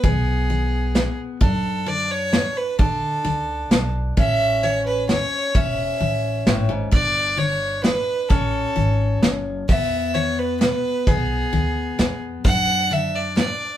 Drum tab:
HH |x-x-x-|x-x-x-|x-x-x-|x-x-x-|
SD |----o-|----o-|----o-|----o-|
BD |o-----|o-----|o-----|o-----|

HH |x-x-x-|x-x-x-|x-x-x-|x-x-x-|
SD |----o-|----o-|----o-|----o-|
BD |o-----|o-----|o-----|o-----|

HH |x-x-x-|x-x-x-|
SD |----o-|----o-|
BD |o-----|o-----|